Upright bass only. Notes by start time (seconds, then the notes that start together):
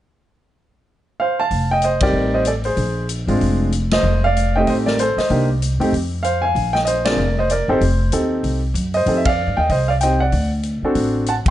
1.51 F1
2.13 A1
2.77 A#1
3.27 G#1
3.40 F1
4.03 F1
4.67 A1
5.17 muted upright bass stroke
5.30 C2
5.79 F#2
5.92 F2
6.55 A#1
7.17 F1
7.68 F#1
7.81 F1
8.12 D#2
8.43 C2
8.74 F#2
9.06 F2
9.47 G2
9.57 D#2
9.69 C2
10.32 D2
10.82 muted upright bass stroke
10.95 A1
11.45 D2